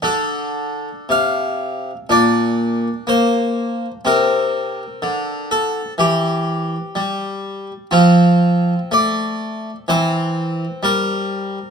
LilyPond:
<<
  \new Staff \with { instrumentName = "Harpsichord" } { \time 4/4 \key c \mixolydian \tempo 4 = 62 << { a'4 f''4 d''4 c''4 | bes'4. a'8 g'4.~ g'16 r16 | f'4 d''4 c''4 bes'4 | } \\ { d'2 d'2 | c'1 | c'2 c'2 | } >> }
  \new Staff \with { instrumentName = "Harpsichord" } { \clef bass \time 4/4 \key c \mixolydian d4 c4 bes,4 bes4 | c4 d4 e4 g4 | f4 a4 e4 g4 | }
>>